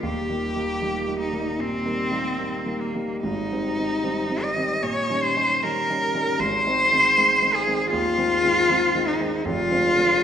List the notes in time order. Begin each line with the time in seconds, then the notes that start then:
0.02 D#1 D#2 G4
0.29 D#3 G3 A#3
0.56 D#3 G3 A#3
0.82 D#3 G3 A#3
1.08 D#3 G3 A#3
1.20 D#4
1.33 D#3 G3 A#3
1.59 A#2 C4
1.86 D#3 G3 A#3
2.11 D#3 G3 A#3
2.38 D#3 G3 A#3
2.66 D#3 G3 A#3
2.80 A#3
2.95 D#3 G3 A#3
3.23 G#1 G#2 D#4
3.51 D#3 G3 C4
3.78 D#3 G3 C4
4.03 D#3 G3 C4
4.30 D#3 G3 C4
4.43 D#5
4.56 D#3 G3 C4
4.83 A#2 C#5
5.10 D#3 G3 C#4
5.23 C5
5.36 D#3 G3 C#4
5.63 D#3 G3 C#4 A#4
5.90 D#3 G3 C#4
6.15 D#3 G3 C#4
6.39 G#1 G#2 C5
6.66 D#3 G#3 C4
6.92 D#3 G#3 C4
7.17 D#3 G#3 C4
7.42 D#3 G#3 C4
7.54 G#4
7.67 D#3 G#3 C4
7.91 D#2 F4
8.18 D#3 G#3 C4
8.43 D#3 G#3 C4
8.69 D#3 G#3 C4
8.95 D#3 G#3 C4
9.08 D#4
9.20 D#3 G#3 C4
9.45 F1 F2 F4
9.71 D3 G#3 C4
9.97 D3 G#3 C4